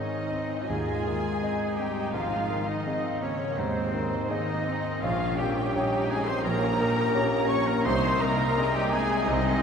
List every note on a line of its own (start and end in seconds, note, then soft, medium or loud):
0.00 0.66 G#2 soft
0.00 0.15 D#3 soft
0.00 0.65 D#3 soft
0.00 0.27 C4 soft
0.00 0.31 C#4 soft
0.00 0.65 D#4 medium
0.00 0.65 D#4 soft
0.00 0.27 G#4 soft
0.00 0.28 D#5 soft
0.00 0.65 D#5 medium
0.00 0.66 D#5 medium
0.00 0.71 D#5 soft
0.31 0.70 C4 soft
0.31 0.92 C4 soft
0.68 1.27 D#2 medium
0.68 1.27 D#2 soft
0.68 2.11 G#2 soft
0.68 1.78 G#3 medium
0.68 1.42 F4 medium
0.68 1.78 G#4 medium
0.68 1.79 G#4 medium
0.68 1.78 G#5 medium
0.68 1.81 G#5 medium
0.68 1.78 G#5 medium
1.07 1.64 D#3 soft
1.43 1.75 C4 soft
1.43 2.87 D#4 medium
1.43 1.75 G#4 soft
1.43 1.75 D#5 soft
1.77 2.14 G3 medium
1.77 2.15 C4 soft
1.77 2.14 G4 medium
1.77 2.13 G4 medium
1.77 2.14 G5 medium
1.77 2.14 G5 soft
2.12 2.71 G#1 medium
2.12 2.72 G#1 medium
2.12 3.54 G#2 medium
2.12 2.67 F3 medium
2.12 2.67 F4 medium
2.12 2.69 F4 medium
2.12 2.66 F5 medium
2.12 2.70 F5 medium
2.50 3.08 D#3 soft
2.67 3.22 D#3 medium
2.67 3.24 D#4 medium
2.67 3.22 D#4 medium
2.67 3.22 D#5 medium
2.67 3.22 D#5 soft
2.67 3.24 D#5 soft
2.87 3.19 C4 soft
2.87 3.22 C4 medium
2.87 3.19 G#4 soft
2.87 3.19 D#5 soft
3.20 3.58 C#3 medium
3.20 3.59 A#3 soft
3.20 3.80 C4 soft
3.20 3.58 C#4 medium
3.20 3.59 C#4 soft
3.20 3.57 C#5 medium
3.20 3.61 C#5 medium
3.56 4.15 D#2 medium
3.56 4.16 D#2 medium
3.56 4.99 G#2 medium
3.56 4.31 C3 medium
3.56 4.31 G#3 medium
3.56 4.30 C4 medium
3.56 4.29 C5 medium
3.56 4.30 C5 medium
3.56 4.32 C5 medium
3.94 4.52 D#3 soft
4.29 5.01 D#3 medium
4.29 4.67 A#3 medium
4.29 4.63 C4 soft
4.29 5.03 D#4 medium
4.29 5.04 D#4 medium
4.29 4.63 G#4 soft
4.29 5.01 D#5 medium
4.29 5.03 D#5 medium
4.29 4.76 D#5 medium
4.29 4.63 D#5 soft
4.66 5.03 C4 medium
4.66 5.03 C4 soft
5.01 5.60 A#1 medium
5.01 6.41 A#1 medium
5.01 5.39 F3 medium
5.01 5.73 C#4 medium
5.01 5.41 F4 medium
5.01 5.38 F4 medium
5.01 5.38 F5 medium
5.01 5.41 F5 medium
5.36 5.96 A#2 soft
5.36 6.10 G3 medium
5.36 6.09 G4 medium
5.36 6.12 G4 medium
5.36 6.08 G5 medium
5.36 6.09 G5 medium
5.36 6.11 G5 medium
5.74 6.07 C#4 soft
5.74 6.45 D#4 medium
5.74 6.07 G4 soft
5.74 6.07 C#5 medium
6.08 6.27 G#3 medium
6.08 6.66 C#4 soft
6.08 6.27 G#4 medium
6.08 6.29 G#4 medium
6.08 6.27 G#5 medium
6.08 6.29 G#5 medium
6.26 6.44 C4 medium
6.26 6.44 C5 medium
6.26 6.45 C5 medium
6.26 6.44 C6 medium
6.26 6.46 C6 medium
6.43 6.99 A#1 medium
6.43 7.00 A#1 medium
6.43 7.82 A#1 medium
6.43 7.50 A#3 medium
6.43 6.79 C#4 medium
6.43 7.33 A#4 medium
6.43 7.50 A#4 medium
6.43 7.47 A#5 medium
6.43 7.50 A#5 medium
6.78 7.36 A#2 medium
6.78 7.14 D#4 medium
7.13 7.85 C#4 medium
7.13 7.46 C#4 medium
7.13 7.47 G4 soft
7.13 7.47 C#5 medium
7.48 7.86 C#4 medium
7.48 7.68 C#4 medium
7.48 7.67 C#5 medium
7.48 7.69 C#5 medium
7.48 7.67 C#6 medium
7.48 7.68 C#6 medium
7.65 7.85 A#3 medium
7.65 7.87 A#4 medium
7.65 7.85 A#4 medium
7.65 7.84 A#5 medium
7.65 7.85 A#5 medium
7.65 7.87 A#5 medium
7.84 8.42 C2 medium
7.84 9.24 C2 medium
7.84 8.43 C2 medium
7.84 8.22 C4 medium
7.84 8.54 D#4 medium
7.84 8.21 C5 medium
7.84 8.23 C5 medium
7.84 8.20 C6 medium
7.84 8.23 C6 medium
7.84 8.21 C6 medium
8.20 8.79 C3 medium
8.20 8.75 A#3 medium
8.20 8.75 A#4 medium
8.20 8.78 A#4 medium
8.20 8.74 A#5 medium
8.20 8.75 A#5 medium
8.20 8.76 A#5 medium
8.56 8.89 C4 medium
8.56 9.26 D#4 medium
8.56 8.90 G#4 medium
8.56 8.90 D#5 medium
8.72 8.93 G3 medium
8.72 8.92 G4 medium
8.72 8.94 G4 medium
8.72 8.91 G5 medium
8.72 8.92 G5 medium
8.72 8.93 G5 medium
8.91 9.27 G#3 medium
8.91 9.49 C4 medium
8.91 9.27 G#4 medium
8.91 9.30 G#4 medium
8.91 9.27 G#5 medium
8.91 9.28 G#5 medium
9.26 9.62 C2 medium
9.26 9.58 D#3 medium
9.26 9.62 C4 medium
9.26 9.62 D#4 medium
9.26 9.62 D#5 medium